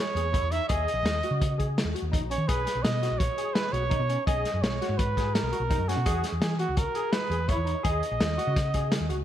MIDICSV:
0, 0, Header, 1, 5, 480
1, 0, Start_track
1, 0, Tempo, 357782
1, 930, Time_signature, 5, 2, 24, 8
1, 12402, End_track
2, 0, Start_track
2, 0, Title_t, "Trumpet"
2, 0, Program_c, 0, 56
2, 0, Note_on_c, 0, 73, 94
2, 691, Note_on_c, 0, 76, 101
2, 711, Note_off_c, 0, 73, 0
2, 910, Note_off_c, 0, 76, 0
2, 918, Note_on_c, 0, 75, 107
2, 2310, Note_off_c, 0, 75, 0
2, 3096, Note_on_c, 0, 73, 97
2, 3327, Note_on_c, 0, 71, 101
2, 3347, Note_off_c, 0, 73, 0
2, 3794, Note_on_c, 0, 75, 89
2, 3814, Note_off_c, 0, 71, 0
2, 4271, Note_on_c, 0, 73, 89
2, 4291, Note_off_c, 0, 75, 0
2, 4753, Note_on_c, 0, 71, 95
2, 4773, Note_off_c, 0, 73, 0
2, 4994, Note_on_c, 0, 73, 100
2, 5014, Note_off_c, 0, 71, 0
2, 5715, Note_off_c, 0, 73, 0
2, 5723, Note_on_c, 0, 75, 97
2, 6198, Note_on_c, 0, 73, 94
2, 6218, Note_off_c, 0, 75, 0
2, 6682, Note_on_c, 0, 71, 92
2, 6702, Note_off_c, 0, 73, 0
2, 7165, Note_on_c, 0, 70, 94
2, 7185, Note_off_c, 0, 71, 0
2, 7895, Note_on_c, 0, 66, 98
2, 7915, Note_off_c, 0, 70, 0
2, 8370, Note_off_c, 0, 66, 0
2, 8603, Note_on_c, 0, 68, 86
2, 8827, Note_off_c, 0, 68, 0
2, 8855, Note_on_c, 0, 66, 87
2, 9089, Note_on_c, 0, 70, 89
2, 9109, Note_off_c, 0, 66, 0
2, 9557, Note_on_c, 0, 71, 95
2, 9577, Note_off_c, 0, 70, 0
2, 10043, Note_on_c, 0, 73, 91
2, 10063, Note_off_c, 0, 71, 0
2, 10525, Note_off_c, 0, 73, 0
2, 10535, Note_on_c, 0, 75, 93
2, 12402, Note_off_c, 0, 75, 0
2, 12402, End_track
3, 0, Start_track
3, 0, Title_t, "Tine electric piano"
3, 0, Program_c, 1, 4
3, 212, Note_on_c, 1, 68, 72
3, 333, Note_off_c, 1, 68, 0
3, 438, Note_on_c, 1, 64, 76
3, 563, Note_off_c, 1, 64, 0
3, 682, Note_on_c, 1, 63, 73
3, 806, Note_off_c, 1, 63, 0
3, 929, Note_on_c, 1, 68, 95
3, 1172, Note_off_c, 1, 68, 0
3, 1654, Note_on_c, 1, 66, 74
3, 1896, Note_off_c, 1, 66, 0
3, 2119, Note_on_c, 1, 68, 69
3, 2365, Note_off_c, 1, 68, 0
3, 2605, Note_on_c, 1, 66, 67
3, 2727, Note_off_c, 1, 66, 0
3, 2841, Note_on_c, 1, 63, 75
3, 2965, Note_off_c, 1, 63, 0
3, 3087, Note_on_c, 1, 61, 68
3, 3209, Note_off_c, 1, 61, 0
3, 3328, Note_on_c, 1, 68, 86
3, 3571, Note_off_c, 1, 68, 0
3, 4052, Note_on_c, 1, 66, 74
3, 4294, Note_off_c, 1, 66, 0
3, 4529, Note_on_c, 1, 68, 79
3, 4771, Note_off_c, 1, 68, 0
3, 5003, Note_on_c, 1, 66, 68
3, 5125, Note_off_c, 1, 66, 0
3, 5224, Note_on_c, 1, 63, 78
3, 5351, Note_off_c, 1, 63, 0
3, 5486, Note_on_c, 1, 61, 72
3, 5608, Note_off_c, 1, 61, 0
3, 5730, Note_on_c, 1, 68, 86
3, 5972, Note_off_c, 1, 68, 0
3, 6458, Note_on_c, 1, 66, 80
3, 6697, Note_off_c, 1, 66, 0
3, 6936, Note_on_c, 1, 68, 73
3, 7176, Note_off_c, 1, 68, 0
3, 7404, Note_on_c, 1, 66, 73
3, 7526, Note_off_c, 1, 66, 0
3, 7641, Note_on_c, 1, 63, 83
3, 7764, Note_off_c, 1, 63, 0
3, 7886, Note_on_c, 1, 61, 77
3, 8007, Note_off_c, 1, 61, 0
3, 8125, Note_on_c, 1, 68, 90
3, 8368, Note_off_c, 1, 68, 0
3, 8840, Note_on_c, 1, 66, 71
3, 9085, Note_off_c, 1, 66, 0
3, 9322, Note_on_c, 1, 68, 81
3, 9566, Note_off_c, 1, 68, 0
3, 9794, Note_on_c, 1, 68, 79
3, 9919, Note_off_c, 1, 68, 0
3, 10033, Note_on_c, 1, 64, 82
3, 10158, Note_off_c, 1, 64, 0
3, 10257, Note_on_c, 1, 63, 70
3, 10386, Note_off_c, 1, 63, 0
3, 10508, Note_on_c, 1, 68, 92
3, 10756, Note_off_c, 1, 68, 0
3, 11235, Note_on_c, 1, 66, 81
3, 11482, Note_off_c, 1, 66, 0
3, 11725, Note_on_c, 1, 68, 78
3, 11970, Note_off_c, 1, 68, 0
3, 12199, Note_on_c, 1, 66, 70
3, 12324, Note_off_c, 1, 66, 0
3, 12402, End_track
4, 0, Start_track
4, 0, Title_t, "Fingered electric bass"
4, 0, Program_c, 2, 33
4, 200, Note_on_c, 2, 40, 85
4, 532, Note_off_c, 2, 40, 0
4, 558, Note_on_c, 2, 40, 84
4, 781, Note_off_c, 2, 40, 0
4, 930, Note_on_c, 2, 39, 95
4, 1148, Note_off_c, 2, 39, 0
4, 1254, Note_on_c, 2, 34, 82
4, 1371, Note_off_c, 2, 34, 0
4, 1379, Note_on_c, 2, 39, 82
4, 1611, Note_off_c, 2, 39, 0
4, 1755, Note_on_c, 2, 49, 86
4, 2428, Note_off_c, 2, 49, 0
4, 2475, Note_on_c, 2, 39, 80
4, 2590, Note_off_c, 2, 39, 0
4, 2713, Note_on_c, 2, 39, 75
4, 2938, Note_off_c, 2, 39, 0
4, 2958, Note_on_c, 2, 34, 85
4, 3181, Note_off_c, 2, 34, 0
4, 3189, Note_on_c, 2, 51, 89
4, 3307, Note_off_c, 2, 51, 0
4, 3340, Note_on_c, 2, 35, 101
4, 3552, Note_off_c, 2, 35, 0
4, 3692, Note_on_c, 2, 35, 70
4, 3799, Note_off_c, 2, 35, 0
4, 3805, Note_on_c, 2, 47, 80
4, 4133, Note_off_c, 2, 47, 0
4, 4174, Note_on_c, 2, 34, 79
4, 4389, Note_off_c, 2, 34, 0
4, 5003, Note_on_c, 2, 35, 88
4, 5331, Note_off_c, 2, 35, 0
4, 5360, Note_on_c, 2, 47, 88
4, 5580, Note_off_c, 2, 47, 0
4, 5727, Note_on_c, 2, 35, 101
4, 5944, Note_off_c, 2, 35, 0
4, 6087, Note_on_c, 2, 42, 83
4, 6195, Note_off_c, 2, 42, 0
4, 6203, Note_on_c, 2, 35, 87
4, 6421, Note_off_c, 2, 35, 0
4, 6561, Note_on_c, 2, 44, 96
4, 7229, Note_off_c, 2, 44, 0
4, 7281, Note_on_c, 2, 35, 78
4, 7391, Note_off_c, 2, 35, 0
4, 7511, Note_on_c, 2, 35, 75
4, 7734, Note_off_c, 2, 35, 0
4, 7756, Note_on_c, 2, 42, 89
4, 7978, Note_off_c, 2, 42, 0
4, 8011, Note_on_c, 2, 47, 94
4, 8117, Note_off_c, 2, 47, 0
4, 8131, Note_on_c, 2, 40, 110
4, 8345, Note_off_c, 2, 40, 0
4, 8483, Note_on_c, 2, 40, 80
4, 8586, Note_off_c, 2, 40, 0
4, 8594, Note_on_c, 2, 52, 88
4, 8926, Note_off_c, 2, 52, 0
4, 8971, Note_on_c, 2, 37, 78
4, 9186, Note_off_c, 2, 37, 0
4, 9791, Note_on_c, 2, 40, 82
4, 10124, Note_off_c, 2, 40, 0
4, 10151, Note_on_c, 2, 40, 85
4, 10376, Note_off_c, 2, 40, 0
4, 10526, Note_on_c, 2, 39, 94
4, 10744, Note_off_c, 2, 39, 0
4, 10886, Note_on_c, 2, 34, 86
4, 10996, Note_off_c, 2, 34, 0
4, 11008, Note_on_c, 2, 39, 89
4, 11226, Note_off_c, 2, 39, 0
4, 11366, Note_on_c, 2, 49, 95
4, 12035, Note_off_c, 2, 49, 0
4, 12080, Note_on_c, 2, 39, 80
4, 12189, Note_off_c, 2, 39, 0
4, 12197, Note_on_c, 2, 37, 76
4, 12402, Note_off_c, 2, 37, 0
4, 12402, End_track
5, 0, Start_track
5, 0, Title_t, "Drums"
5, 224, Note_on_c, 9, 42, 56
5, 358, Note_off_c, 9, 42, 0
5, 456, Note_on_c, 9, 36, 99
5, 456, Note_on_c, 9, 42, 69
5, 590, Note_off_c, 9, 36, 0
5, 590, Note_off_c, 9, 42, 0
5, 692, Note_on_c, 9, 42, 55
5, 826, Note_off_c, 9, 42, 0
5, 927, Note_on_c, 9, 42, 81
5, 936, Note_on_c, 9, 36, 110
5, 1061, Note_off_c, 9, 42, 0
5, 1070, Note_off_c, 9, 36, 0
5, 1181, Note_on_c, 9, 42, 56
5, 1315, Note_off_c, 9, 42, 0
5, 1417, Note_on_c, 9, 38, 106
5, 1417, Note_on_c, 9, 42, 75
5, 1551, Note_off_c, 9, 38, 0
5, 1551, Note_off_c, 9, 42, 0
5, 1652, Note_on_c, 9, 42, 55
5, 1786, Note_off_c, 9, 42, 0
5, 1898, Note_on_c, 9, 42, 83
5, 1899, Note_on_c, 9, 36, 106
5, 2033, Note_off_c, 9, 36, 0
5, 2033, Note_off_c, 9, 42, 0
5, 2142, Note_on_c, 9, 36, 64
5, 2144, Note_on_c, 9, 42, 53
5, 2276, Note_off_c, 9, 36, 0
5, 2278, Note_off_c, 9, 42, 0
5, 2387, Note_on_c, 9, 38, 102
5, 2387, Note_on_c, 9, 42, 81
5, 2522, Note_off_c, 9, 38, 0
5, 2522, Note_off_c, 9, 42, 0
5, 2627, Note_on_c, 9, 42, 54
5, 2761, Note_off_c, 9, 42, 0
5, 2861, Note_on_c, 9, 36, 96
5, 2868, Note_on_c, 9, 42, 72
5, 2995, Note_off_c, 9, 36, 0
5, 3003, Note_off_c, 9, 42, 0
5, 3099, Note_on_c, 9, 42, 63
5, 3233, Note_off_c, 9, 42, 0
5, 3337, Note_on_c, 9, 42, 89
5, 3340, Note_on_c, 9, 36, 101
5, 3472, Note_off_c, 9, 42, 0
5, 3474, Note_off_c, 9, 36, 0
5, 3580, Note_on_c, 9, 38, 36
5, 3580, Note_on_c, 9, 42, 65
5, 3714, Note_off_c, 9, 38, 0
5, 3714, Note_off_c, 9, 42, 0
5, 3817, Note_on_c, 9, 38, 107
5, 3817, Note_on_c, 9, 42, 83
5, 3951, Note_off_c, 9, 38, 0
5, 3951, Note_off_c, 9, 42, 0
5, 4064, Note_on_c, 9, 38, 33
5, 4064, Note_on_c, 9, 42, 59
5, 4198, Note_off_c, 9, 38, 0
5, 4198, Note_off_c, 9, 42, 0
5, 4294, Note_on_c, 9, 36, 110
5, 4299, Note_on_c, 9, 42, 87
5, 4428, Note_off_c, 9, 36, 0
5, 4433, Note_off_c, 9, 42, 0
5, 4534, Note_on_c, 9, 42, 62
5, 4668, Note_off_c, 9, 42, 0
5, 4768, Note_on_c, 9, 38, 101
5, 4768, Note_on_c, 9, 42, 81
5, 4902, Note_off_c, 9, 38, 0
5, 4902, Note_off_c, 9, 42, 0
5, 5016, Note_on_c, 9, 42, 58
5, 5150, Note_off_c, 9, 42, 0
5, 5247, Note_on_c, 9, 42, 73
5, 5250, Note_on_c, 9, 36, 101
5, 5381, Note_off_c, 9, 42, 0
5, 5384, Note_off_c, 9, 36, 0
5, 5494, Note_on_c, 9, 42, 59
5, 5628, Note_off_c, 9, 42, 0
5, 5731, Note_on_c, 9, 36, 114
5, 5735, Note_on_c, 9, 42, 79
5, 5865, Note_off_c, 9, 36, 0
5, 5869, Note_off_c, 9, 42, 0
5, 5974, Note_on_c, 9, 38, 36
5, 5974, Note_on_c, 9, 42, 60
5, 6108, Note_off_c, 9, 38, 0
5, 6108, Note_off_c, 9, 42, 0
5, 6220, Note_on_c, 9, 38, 111
5, 6220, Note_on_c, 9, 42, 74
5, 6354, Note_off_c, 9, 38, 0
5, 6354, Note_off_c, 9, 42, 0
5, 6464, Note_on_c, 9, 38, 31
5, 6464, Note_on_c, 9, 42, 55
5, 6599, Note_off_c, 9, 38, 0
5, 6599, Note_off_c, 9, 42, 0
5, 6694, Note_on_c, 9, 42, 85
5, 6696, Note_on_c, 9, 36, 101
5, 6828, Note_off_c, 9, 42, 0
5, 6830, Note_off_c, 9, 36, 0
5, 6938, Note_on_c, 9, 36, 73
5, 6945, Note_on_c, 9, 38, 30
5, 6945, Note_on_c, 9, 42, 62
5, 7072, Note_off_c, 9, 36, 0
5, 7079, Note_off_c, 9, 38, 0
5, 7079, Note_off_c, 9, 42, 0
5, 7179, Note_on_c, 9, 38, 97
5, 7179, Note_on_c, 9, 42, 83
5, 7313, Note_off_c, 9, 38, 0
5, 7313, Note_off_c, 9, 42, 0
5, 7414, Note_on_c, 9, 42, 61
5, 7548, Note_off_c, 9, 42, 0
5, 7654, Note_on_c, 9, 42, 76
5, 7656, Note_on_c, 9, 36, 105
5, 7788, Note_off_c, 9, 42, 0
5, 7790, Note_off_c, 9, 36, 0
5, 7904, Note_on_c, 9, 38, 34
5, 7904, Note_on_c, 9, 42, 62
5, 8038, Note_off_c, 9, 38, 0
5, 8038, Note_off_c, 9, 42, 0
5, 8128, Note_on_c, 9, 42, 92
5, 8134, Note_on_c, 9, 36, 105
5, 8262, Note_off_c, 9, 42, 0
5, 8268, Note_off_c, 9, 36, 0
5, 8367, Note_on_c, 9, 38, 35
5, 8367, Note_on_c, 9, 42, 65
5, 8501, Note_off_c, 9, 38, 0
5, 8501, Note_off_c, 9, 42, 0
5, 8608, Note_on_c, 9, 38, 108
5, 8608, Note_on_c, 9, 42, 84
5, 8742, Note_off_c, 9, 38, 0
5, 8742, Note_off_c, 9, 42, 0
5, 8844, Note_on_c, 9, 42, 57
5, 8978, Note_off_c, 9, 42, 0
5, 9081, Note_on_c, 9, 42, 83
5, 9087, Note_on_c, 9, 36, 109
5, 9215, Note_off_c, 9, 42, 0
5, 9221, Note_off_c, 9, 36, 0
5, 9323, Note_on_c, 9, 42, 53
5, 9457, Note_off_c, 9, 42, 0
5, 9560, Note_on_c, 9, 38, 110
5, 9560, Note_on_c, 9, 42, 78
5, 9695, Note_off_c, 9, 38, 0
5, 9695, Note_off_c, 9, 42, 0
5, 9813, Note_on_c, 9, 42, 50
5, 9947, Note_off_c, 9, 42, 0
5, 10043, Note_on_c, 9, 42, 71
5, 10046, Note_on_c, 9, 36, 98
5, 10177, Note_off_c, 9, 42, 0
5, 10180, Note_off_c, 9, 36, 0
5, 10289, Note_on_c, 9, 42, 56
5, 10423, Note_off_c, 9, 42, 0
5, 10525, Note_on_c, 9, 42, 74
5, 10528, Note_on_c, 9, 36, 101
5, 10659, Note_off_c, 9, 42, 0
5, 10662, Note_off_c, 9, 36, 0
5, 10771, Note_on_c, 9, 42, 56
5, 10905, Note_off_c, 9, 42, 0
5, 11008, Note_on_c, 9, 38, 110
5, 11008, Note_on_c, 9, 42, 84
5, 11142, Note_off_c, 9, 38, 0
5, 11142, Note_off_c, 9, 42, 0
5, 11253, Note_on_c, 9, 42, 61
5, 11388, Note_off_c, 9, 42, 0
5, 11490, Note_on_c, 9, 36, 110
5, 11490, Note_on_c, 9, 38, 37
5, 11490, Note_on_c, 9, 42, 85
5, 11624, Note_off_c, 9, 36, 0
5, 11624, Note_off_c, 9, 38, 0
5, 11624, Note_off_c, 9, 42, 0
5, 11723, Note_on_c, 9, 42, 66
5, 11730, Note_on_c, 9, 36, 69
5, 11858, Note_off_c, 9, 42, 0
5, 11864, Note_off_c, 9, 36, 0
5, 11962, Note_on_c, 9, 38, 102
5, 11962, Note_on_c, 9, 42, 85
5, 12097, Note_off_c, 9, 38, 0
5, 12097, Note_off_c, 9, 42, 0
5, 12207, Note_on_c, 9, 42, 62
5, 12341, Note_off_c, 9, 42, 0
5, 12402, End_track
0, 0, End_of_file